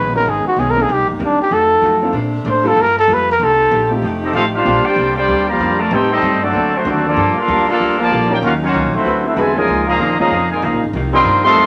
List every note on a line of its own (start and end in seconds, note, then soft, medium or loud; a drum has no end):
0.00 0.25 A#1 loud
0.00 0.15 B2 medium
0.00 0.85 C#3 medium
0.00 0.15 D#3 medium
0.00 0.15 G#3 medium
0.00 0.87 G#3 medium
0.00 0.87 B3 medium
0.00 0.16 C#4 medium
0.00 1.49 D#4 medium
0.00 0.15 B4 medium
0.14 0.24 G#3 medium
0.14 0.25 B3 medium
0.14 0.25 C#4 medium
0.14 0.25 D#4 medium
0.14 0.25 F#4 medium
0.14 0.31 A#4 medium
0.26 0.44 G#1 medium
0.26 0.46 B2 soft
0.26 0.47 D#3 soft
0.26 0.47 G#3 medium
0.26 0.48 C#4 medium
0.26 0.47 G#4 medium
0.45 0.61 F#4 medium
0.45 muted upright bass stroke soft
0.56 0.87 B1 medium
0.56 0.78 B2 medium
0.56 0.78 D#3 medium
0.56 0.79 G#3 medium
0.56 0.79 C#4 medium
0.56 0.72 G#4 medium
0.71 0.84 A#4 loud
0.76 0.87 A#3 medium
0.76 0.87 C4 medium
0.76 0.87 D4 medium
0.76 0.87 D#4 medium
0.76 0.88 A4 medium
0.82 0.94 G#4 medium
0.87 0.99 C2 medium
0.87 1.50 C3 medium
0.87 1.09 C3 soft
0.87 1.50 G3 medium
0.87 1.09 G3 medium
0.87 1.50 A#3 medium
0.87 1.09 A#3 medium
0.87 1.10 D#4 medium
0.92 1.10 G4 medium
0.99 1.09 A#1 medium
1.10 1.19 G1 medium
1.10 1.26 A#3 soft
1.19 1.38 D#2 medium
1.19 1.40 C3 medium
1.19 1.41 G3 medium
1.19 1.41 A#3 medium
1.19 1.41 D#4 medium
1.25 1.41 D4 medium
1.39 1.54 G4 medium
1.39 muted upright bass stroke soft
1.50 1.81 F2 medium
1.50 2.14 D#3 medium
1.50 1.71 F3 soft
1.50 2.14 F#3 medium
1.50 1.72 A3 medium
1.50 3.38 A3 medium
1.50 1.72 D#4 medium
1.50 2.14 F4 medium
1.50 1.72 F#4 medium
1.50 2.15 A4 medium
1.81 2.12 F#2 medium
1.81 2.03 F3 medium
1.81 2.03 A3 medium
1.81 2.04 D#4 medium
1.81 2.04 F#4 medium
2.02 2.13 A#3 medium
2.02 2.13 C4 medium
2.02 2.13 D4 medium
2.02 2.13 F4 medium
2.02 2.14 A4 medium
2.13 2.44 A#2 medium
2.13 2.76 C3 medium
2.13 2.35 A#3 medium
2.13 2.76 D4 medium
2.13 2.35 D4 medium
2.13 2.35 A4 medium
2.13 2.36 C5 medium
2.45 2.75 A2 loud
2.45 2.66 A#3 medium
2.45 2.66 D4 medium
2.45 2.67 A4 medium
2.45 2.67 C5 medium
2.50 2.69 C5 medium
2.64 2.75 G3 medium
2.64 2.75 A#3 medium
2.64 2.75 D4 medium
2.64 2.76 F4 medium
2.64 2.76 A4 loud
2.64 2.83 A4 loud
2.75 3.07 G2 medium
2.75 3.38 F3 medium
2.75 2.97 G3 soft
2.75 2.98 A#3 soft
2.75 2.98 F4 medium
2.75 4.63 G4 medium
2.75 2.99 A4 medium
2.81 2.98 A#4 loud
2.99 3.15 A4 medium
3.08 3.38 F2 loud
3.08 3.29 G3 medium
3.08 3.30 A#3 medium
3.08 3.30 F4 medium
3.08 3.30 A4 medium
3.14 3.30 B4 loud
3.32 3.46 A#4 medium
3.38 3.70 C2 loud
3.38 3.61 C3 medium
3.38 4.01 D#3 medium
3.38 3.61 A#3 medium
3.38 4.01 C4 medium
3.38 3.61 D#4 medium
3.43 3.62 G4 medium
3.43 3.93 A4 medium
3.71 4.01 A#1 loud
3.71 3.92 C3 medium
3.71 3.92 A#3 medium
3.71 3.92 D#4 medium
3.71 3.92 G4 medium
3.90 4.01 A3 medium
3.90 4.01 C4 medium
3.90 4.02 D#4 medium
3.90 4.02 F4 medium
3.90 4.02 G4 medium
4.02 4.33 F1 medium
4.02 4.64 F3 medium
4.02 4.24 F3 medium
4.02 4.65 A3 medium
4.02 4.24 A3 medium
4.02 4.65 D#4 medium
4.02 4.24 D#4 medium
4.02 4.24 G4 medium
4.22 4.33 A3 medium
4.22 4.33 C4 medium
4.22 4.34 C4 medium
4.22 4.33 D#4 medium
4.22 4.34 G4 medium
4.22 4.34 A4 medium
4.22 4.34 D#5 medium
4.33 4.64 A1 loud
4.33 4.55 F3 medium
4.33 4.43 A3 medium
4.33 4.55 A3 medium
4.33 4.44 C4 medium
4.33 4.44 D#4 medium
4.33 4.56 D#4 medium
4.33 4.44 F4 medium
4.33 4.56 G4 medium
4.33 4.44 A4 medium
4.33 4.44 C5 medium
4.33 4.44 F5 loud
4.54 4.84 G3 medium
4.54 4.83 D4 medium
4.54 4.84 D4 medium
4.54 4.83 F4 medium
4.54 4.83 G4 loud
4.54 4.83 C5 loud
4.54 4.83 F5 loud
4.64 4.83 A#1 loud
4.64 4.86 A#2 soft
4.64 5.73 D3 medium
4.64 4.87 G3 medium
4.64 5.73 A#3 medium
4.64 4.83 A#3 medium
4.64 7.13 C4 medium
4.64 4.83 C4 medium
4.64 4.87 C4 medium
4.64 4.83 D4 medium
4.64 4.83 F4 medium
4.64 5.73 G4 medium
4.64 4.83 G4 medium
4.68 4.87 D4 medium
4.84 5.17 G3 medium
4.84 5.17 D4 medium
4.84 5.16 F4 loud
4.84 5.17 G4 medium
4.84 5.16 C5 loud
4.84 5.16 D5 loud
4.84 5.16 G5 loud
4.84 muted upright bass stroke soft
4.96 5.27 C2 loud
4.96 5.18 A#2 medium
4.96 5.18 G3 medium
4.96 5.18 C4 medium
4.96 5.18 D4 medium
5.17 5.46 G3 loud
5.17 5.46 D4 medium
5.17 5.46 F4 loud
5.17 5.47 G4 loud
5.17 5.46 C5 medium
5.17 5.46 D5 loud
5.17 5.46 G5 loud
5.28 5.58 D2 medium
5.28 5.49 A#2 soft
5.28 5.49 G3 soft
5.28 5.50 C4 medium
5.28 5.50 D4 medium
5.49 5.80 F3 loud
5.49 5.80 G3 loud
5.49 5.80 A#3 loud
5.49 5.80 G4 loud
5.49 5.79 D5 loud
5.49 5.80 F5 loud
5.49 5.80 A#5 loud
5.59 5.90 F2 medium
5.59 5.80 A#2 medium
5.59 5.81 G3 medium
5.59 5.81 C4 medium
5.59 5.81 D4 medium
5.80 5.91 A3 medium
5.80 5.92 F4 medium
5.80 5.92 A#4 loud
5.80 5.92 D5 medium
5.80 5.91 A5 loud
5.90 6.21 A2 loud
5.90 6.12 A2 medium
5.90 6.53 D#3 medium
5.90 6.12 G3 soft
5.90 6.53 A3 medium
5.90 6.08 A3 medium
5.90 6.08 C4 medium
5.90 6.11 C4 loud
5.90 6.13 C4 medium
5.90 6.09 D#4 medium
5.90 6.11 D#4 medium
5.90 6.12 D#4 loud
5.90 6.53 G4 medium
5.90 6.09 G4 medium
5.90 6.11 G4 loud
5.90 6.12 A4 medium
5.90 6.09 B4 medium
5.90 6.12 C5 loud
5.90 6.12 G5 loud
5.94 6.13 D#4 medium
6.12 6.41 G3 medium
6.12 6.41 C4 medium
6.12 6.41 C4 loud
6.12 6.41 D#4 medium
6.12 6.41 G4 loud
6.12 6.41 A4 medium
6.12 6.41 D#5 loud
6.22 6.52 G2 loud
6.22 6.43 A2 medium
6.22 6.43 G3 medium
6.22 6.44 C4 medium
6.22 6.44 D#4 medium
6.43 6.74 F#3 medium
6.43 6.74 A3 medium
6.43 6.74 C4 medium
6.43 6.73 D4 medium
6.43 6.74 F#4 medium
6.43 6.74 A4 medium
6.43 6.74 D5 loud
6.53 6.84 D2 medium
6.53 7.15 D3 medium
6.53 6.74 D3 soft
6.53 8.40 A#3 medium
6.53 6.75 A#3 medium
6.53 6.75 C4 medium
6.53 7.15 F#4 medium
6.53 6.75 F#4 medium
6.74 6.85 F#3 medium
6.74 6.85 A3 medium
6.74 6.87 A3 medium
6.74 6.86 C4 medium
6.74 6.86 D4 medium
6.74 6.87 F#4 medium
6.74 6.87 C5 loud
6.85 7.15 D#2 loud
6.85 7.06 D3 medium
6.85 7.05 F#3 medium
6.85 7.05 A3 medium
6.85 7.06 A#3 medium
6.85 7.06 C4 medium
6.85 7.05 D4 medium
6.85 7.07 F#4 medium
6.85 7.06 F#4 medium
6.85 7.06 A4 medium
6.85 7.06 D5 loud
7.06 7.35 F3 medium
7.06 7.34 A#3 medium
7.06 7.36 A#3 loud
7.06 7.35 D4 medium
7.06 7.36 F4 medium
7.06 7.36 A4 medium
7.06 7.36 D5 loud
7.16 7.34 G2 loud
7.16 8.40 F3 medium
7.16 8.40 G3 medium
7.16 7.37 G3 medium
7.16 7.38 A#3 medium
7.16 7.38 F4 medium
7.16 8.40 G4 medium
7.16 7.38 A4 medium
7.36 7.68 A#3 medium
7.36 7.67 D4 medium
7.36 7.69 D4 loud
7.36 7.67 F4 loud
7.36 7.69 A4 medium
7.36 7.69 A#4 medium
7.36 7.69 F5 loud
7.36 muted upright bass stroke soft
7.48 7.66 D#2 loud
7.48 7.68 G3 medium
7.48 7.69 A#3 medium
7.48 7.69 F4 medium
7.48 7.69 A4 medium
7.68 7.97 A#3 loud
7.68 7.97 D4 medium
7.68 7.98 D4 medium
7.68 7.97 F4 medium
7.68 7.98 A4 loud
7.68 7.98 A#4 medium
7.68 7.98 F5 loud
7.68 muted upright bass stroke soft
7.79 8.10 D2 medium
7.79 8.00 G3 soft
7.79 8.00 A#3 medium
7.79 8.01 F4 medium
7.79 8.01 A4 medium
8.00 8.29 D3 loud
8.00 8.29 F3 loud
8.00 8.29 A#3 loud
8.00 8.30 F4 loud
8.00 8.30 A#4 medium
8.00 8.30 D5 medium
8.00 8.29 A5 loud
8.11 8.41 A#1 loud
8.11 8.31 G3 medium
8.11 8.32 A#3 medium
8.11 8.32 F4 medium
8.11 8.32 A4 medium
8.30 8.41 F#3 medium
8.30 8.37 A#3 medium
8.30 8.41 C#4 medium
8.30 8.37 D4 medium
8.30 8.41 D#4 medium
8.30 8.41 F4 medium
8.30 8.38 F4 medium
8.30 8.37 G4 medium
8.30 8.41 A#4 medium
8.30 8.37 A#4 medium
8.30 8.38 D5 medium
8.30 8.38 G5 loud
8.41 8.73 D#2 loud
8.41 9.03 D#3 medium
8.41 8.63 D#3 medium
8.41 9.66 F#3 medium
8.41 8.63 F#3 medium
8.41 8.52 A#3 medium
8.41 9.03 C#4 medium
8.41 8.51 C#4 medium
8.41 8.64 C#4 medium
8.41 9.04 D#4 medium
8.41 8.52 F4 medium
8.41 8.53 F#4 medium
8.41 8.52 A#4 medium
8.45 8.53 C#4 medium
8.45 8.64 F4 medium
8.45 8.53 F5 loud
8.62 8.91 F#3 medium
8.62 8.91 A#3 medium
8.62 8.92 A#3 medium
8.62 8.91 C#4 medium
8.62 8.92 F4 medium
8.62 8.93 F#4 medium
8.62 8.93 C#5 loud
8.73 8.84 C#2 loud
8.73 8.94 D#3 medium
8.73 8.95 F#3 medium
8.73 8.95 C#4 medium
8.73 8.95 F4 medium
8.84 8.94 A#1 medium
8.94 9.04 F#1 medium
8.94 9.23 F#3 medium
8.94 9.23 A3 medium
8.94 9.23 C4 medium
8.94 9.23 E4 medium
8.94 9.24 F#4 medium
8.94 9.23 C5 medium
9.04 9.35 D2 medium
9.04 9.67 C3 medium
9.04 9.26 D3 soft
9.04 9.67 B3 medium
9.04 9.26 C4 soft
9.04 9.66 E4 medium
9.04 9.26 F#4 medium
9.08 9.27 B4 medium
9.25 9.37 A3 medium
9.25 9.37 C4 medium
9.25 9.37 E4 medium
9.25 9.38 F#4 medium
9.25 9.38 A4 medium
9.25 9.38 E5 loud
9.36 9.67 E2 medium
9.36 9.57 D3 medium
9.36 9.55 G#3 medium
9.36 9.57 C4 medium
9.36 9.57 E4 medium
9.36 9.58 F#4 medium
9.36 9.57 A4 medium
9.36 9.58 B4 medium
9.36 9.57 C5 medium
9.36 9.57 G#5 loud
9.56 9.85 A#2 medium
9.56 9.85 F3 medium
9.56 9.85 G#3 medium
9.56 9.67 G#3 medium
9.56 9.67 C#4 medium
9.56 9.67 D#4 medium
9.56 9.67 F4 medium
9.56 9.86 F4 medium
9.56 9.67 A#4 medium
9.56 9.86 A#4 medium
9.56 9.86 D#5 medium
9.56 9.86 G#5 loud
9.67 9.98 C#2 loud
9.67 10.92 C#3 medium
9.67 9.88 C#3 soft
9.67 11.66 F3 medium
9.67 9.89 F3 medium
9.67 10.92 A#3 medium
9.67 9.89 A#3 medium
9.67 10.92 D#4 medium
9.67 9.89 D#4 medium
9.87 10.16 A#2 medium
9.87 10.16 F3 loud
9.87 10.16 A#3 loud
9.87 10.17 G#4 medium
9.87 10.17 D#5 medium
9.87 10.17 F5 medium
9.87 10.17 A#5 loud
9.99 10.29 D#2 loud
9.99 10.20 C#3 medium
9.99 10.20 F3 medium
9.99 10.20 A#3 medium
9.99 10.21 D#4 medium
10.19 10.48 A#2 medium
10.19 10.48 F3 medium
10.19 10.30 G#3 medium
10.19 10.48 A#3 medium
10.19 10.30 C#4 medium
10.19 10.30 D#4 medium
10.19 10.30 F4 medium
10.19 10.48 G#4 medium
10.19 10.30 A#4 medium
10.19 10.49 D#5 loud
10.19 10.49 F5 medium
10.19 10.49 A#5 loud
10.31 10.61 F2 medium
10.31 10.51 C#3 medium
10.31 10.52 F3 soft
10.31 10.52 A#3 medium
10.31 10.53 D#4 medium
10.51 10.61 A#2 medium
10.51 10.61 F3 medium
10.51 10.61 G#3 medium
10.51 10.62 F4 medium
10.51 10.62 A#4 medium
10.51 10.62 D#5 medium
10.51 10.62 G#5 loud
10.62 10.72 C#2 medium
10.62 10.82 A#2 medium
10.62 10.83 C#3 medium
10.62 10.82 F3 medium
10.62 10.83 F3 medium
10.62 10.82 A#3 medium
10.62 10.83 A#3 medium
10.62 10.84 D#4 medium
10.62 10.82 G#4 medium
10.62 10.82 D#5 medium
10.62 10.82 F5 medium
10.62 10.82 A#5 medium
10.72 10.83 A#1 medium
10.83 10.93 G#1 medium
10.93 11.24 C2 loud
10.93 11.15 C3 medium
10.93 11.55 D#3 medium
10.93 11.15 F3 medium
10.93 11.55 A#3 medium
10.93 11.15 A#3 medium
10.93 11.66 D#4 medium
10.93 11.16 D#4 medium
11.13 11.42 D#3 loud
11.13 11.42 G3 medium
11.13 11.42 G3 loud
11.13 11.42 C4 loud
11.13 11.42 D4 medium
11.13 11.42 D#4 medium
11.13 11.42 F4 medium
11.13 11.43 A#4 medium
11.13 11.43 A#4 loud
11.13 11.42 D#5 loud
11.13 11.42 G5 loud
11.13 11.43 C6 loud
11.24 11.55 G2 loud
11.24 11.45 C3 medium
11.24 11.45 F3 medium
11.24 11.46 A#3 medium
11.24 11.46 D#4 medium
11.44 11.66 D#3 loud
11.44 11.55 G3 medium
11.44 11.66 A3 loud
11.44 11.55 C4 medium
11.44 11.66 C4 loud
11.44 11.55 D#4 medium
11.44 11.55 F4 medium
11.44 11.55 A4 medium
11.44 11.66 A4 loud
11.44 11.66 D#5 loud
11.44 11.66 F5 loud
11.44 11.66 C6 loud
11.56 11.66 F2 medium
11.56 11.66 C3 medium
11.56 11.66 F3 medium
11.56 11.66 A3 medium
11.56 11.66 C4 medium
11.56 11.66 D#4 medium
11.56 11.66 A4 medium